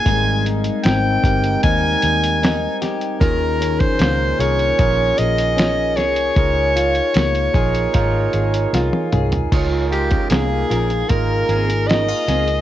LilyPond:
<<
  \new Staff \with { instrumentName = "Soprano saxophone" } { \time 4/4 \key des \lydian \tempo 4 = 76 aes''8 r8 g''4 aes''4. r8 | bes'8. c''8. des''4 ees''4 des''8~ | des''2. r4 | r8 g'8 aes'4 bes'4 ees''4 | }
  \new Staff \with { instrumentName = "Clean electric guitar" } { \time 4/4 \key des \lydian r1 | r1 | r1 | <f' des''>8 r16 <des' bes'>8 r16 <des' bes'>16 r8. <c' aes'>16 r16 <des' bes'>16 r16 <c' aes'>16 r16 | }
  \new Staff \with { instrumentName = "Steel-string acoustic guitar" } { \time 4/4 \key des \lydian aes8 ees'8 c'4 ees'4 ees'8 g'8 | ees8 des'8 bes8 aes'8 des'8 aes'8 des'8 aes'8 | r8 f'8 bes8 aes'8 f'8 aes'8 f'8 aes'8 | r8 f'8 bes8 f'8 bes8 aes'8 ees'16 f'16 aes'8 | }
  \new Staff \with { instrumentName = "Tine electric piano" } { \time 4/4 \key des \lydian <g bes c' ees' bes'>4 r8 <c' ees' g' bes'>8 <g c' ees' bes'>4. r8 | <des' f' aes' bes'>4 r8 <des' f' aes' bes'>8 <des' f' aes' bes'>4. r8 | <ees' f' aes' bes'>4 r8 <ees' f' aes' bes'>8 <ees' f' aes' bes'>4. r8 | <ees' f' aes' bes'>8 <aes ees' f' bes'>4 r8 <ees' f' aes' bes'>4. r8 | }
  \new Staff \with { instrumentName = "Fingered electric bass" } { \clef bass \time 4/4 \key des \lydian aes,,4 aes,,8 g,,8 ees,8 ees,4 r8 | ees,4 des,8 c,8 bes,,8 bes,,4 c,8 | des,4 des,8 bes,,8 aes,,8 aes,,8 c,16 r16 c,8 | des,4 c,8 bes,,8 aes,,8 aes,,4 des,8 | }
  \new DrumStaff \with { instrumentName = "Drums" } \drummode { \time 4/4 <hh bd>8 hh16 hh16 <hh sn>8 <hh bd>16 hh16 <hh bd>8 hh16 hh16 <hh sn>8 <hh sn>16 hh16 | <hh bd>8 hh16 <hh bd>16 <hh sn>8 hh16 hh16 <hh bd>8 hh16 hh16 <hh sn>8 <hh sn>16 hh16 | <hh bd>8 hh16 hh16 <hh sn>16 hh16 <hh bd>16 hh16 <hh bd>8 hh16 hh16 <hh sn>16 tommh16 <hh toml>16 <hh tomfh>16 | <cymc hh bd>8 hh16 <hh bd>16 <hh sn>8 hh16 hh16 <hh bd>8 hh16 hh16 <hh sn>8 <hh sn>16 hh16 | }
>>